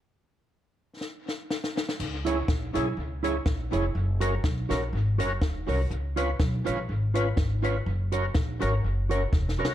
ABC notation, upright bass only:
X:1
M:4/4
L:1/8
Q:"Swing" 1/4=123
K:C#dor
V:1 name="Upright bass" clef=bass
z8 | C,,2 A,,, B,,, C,,2 A,,, ^E,,, | F,,,2 B,,, A,,, G,,, F,,, E,,, ^B,,, | C,,2 B,,, A,,, G,,,2 G,,,2 |
F,,,2 A,,, G,,, F,,,2 E,,, ^B,,, |]